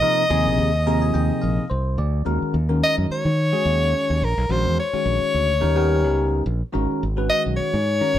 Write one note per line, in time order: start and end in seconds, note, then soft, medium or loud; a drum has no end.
0.00 0.22 C3 medium
0.00 0.22 F3 medium
0.00 0.23 A#3 medium
0.00 0.22 D#4 medium
0.00 0.22 A#4 medium
0.00 1.69 D#5 loud
0.30 0.45 D#2 medium
0.30 0.69 C3 medium
0.30 0.69 F3 medium
0.30 0.70 A#3 medium
0.30 0.70 D#4 medium
0.30 0.70 G#4 loud
0.46 0.58 A#1 medium
0.58 1.11 D#2 medium
0.86 1.63 C3 medium
0.86 1.64 F3 medium
0.86 1.64 A#3 medium
0.86 1.64 D#4 medium
0.86 1.64 G#4 loud
0.86 1.01 A#5 medium
1.02 1.14 G#5 medium
1.14 1.29 D#2 medium
1.14 1.40 G5 medium
1.42 1.58 A#1 medium
1.42 1.68 F5 medium
1.70 1.96 C2 medium
1.70 1.96 C5 medium
1.98 2.23 D2 medium
1.98 2.25 D5 medium
2.25 2.41 D#2 medium
2.25 2.54 D#3 medium
2.25 2.55 G#3 medium
2.25 2.55 C#4 medium
2.25 2.55 F#4 medium
2.25 2.55 A#4 medium
2.42 muted fingered electric bass stroke soft
2.54 2.81 D#2 medium
2.69 3.27 D#3 medium
2.69 3.27 G#3 medium
2.69 3.27 C#4 medium
2.69 3.27 F#4 medium
2.69 3.27 A#4 medium
2.84 2.96 D#5 medium
2.98 3.10 F#2 medium
3.10 4.26 C#5 loud
3.10 muted fingered electric bass stroke soft
3.25 3.52 D#3 medium
3.52 4.19 D#3 medium
3.52 4.19 G#3 medium
3.52 4.19 C#4 medium
3.52 4.19 F#4 medium
3.52 4.19 G#4 medium
3.65 3.92 D#2 medium
4.10 4.21 D#2 medium
4.22 4.37 A#1 medium
4.22 4.53 A#4 medium
4.38 4.49 B1 medium
4.49 4.64 A#1 medium
4.49 4.79 D#3 medium
4.49 4.79 G#3 medium
4.49 4.79 C#4 medium
4.49 4.79 F#4 medium
4.49 4.79 A#4 medium
4.49 4.79 C5 medium
4.65 4.77 E2 medium
4.80 6.43 C#5 medium
4.93 5.51 D#3 medium
4.93 5.51 G#3 medium
4.93 5.51 C#4 medium
4.93 5.51 F#4 medium
4.93 5.51 C#5 medium
4.93 muted fingered electric bass stroke soft
5.05 5.21 A#1 medium
5.34 5.61 D2 medium
5.61 6.07 D#2 medium
5.61 5.74 G3 medium
5.61 5.74 B3 medium
5.61 5.74 C#4 medium
5.61 5.75 D#4 medium
5.61 5.75 A#4 medium
5.76 6.42 G3 medium
5.76 6.42 B3 medium
5.76 6.42 C#4 medium
5.76 6.43 D#4 medium
5.76 6.43 A#4 medium
6.07 6.44 C#2 medium
6.46 6.61 A#1 medium
6.73 6.89 G#1 medium
6.73 7.02 D#3 medium
6.73 7.02 G#3 medium
6.73 7.03 C#4 medium
6.73 7.02 F#4 medium
6.73 7.03 A#4 medium
6.91 muted fingered electric bass stroke soft
7.03 7.29 G#1 medium
7.17 7.74 D#3 medium
7.17 7.75 G#3 medium
7.17 7.75 C#4 medium
7.17 7.75 F#4 medium
7.17 7.75 B4 medium
7.30 7.43 D#5 medium
7.46 7.58 B1 medium
7.57 8.19 C#5 medium
7.57 muted fingered electric bass stroke soft
7.74 8.00 G#2 medium
8.00 8.19 D#3 medium
8.00 8.19 G#3 medium
8.00 8.19 C#4 medium
8.00 8.19 F#4 medium
8.00 8.19 A#4 medium
8.14 8.19 G#1 medium